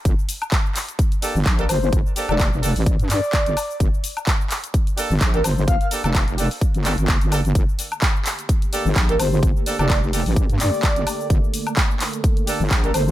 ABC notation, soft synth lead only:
X:1
M:4/4
L:1/16
Q:"Swing 16ths" 1/4=128
K:Gm
V:1 name="Soft synth lead"
z12 z B c c | z3 d2 z4 z d6 | z12 z B c c | f f z12 z2 |
z12 z B c c | z3 d2 z4 z d6 | z12 z B c c |]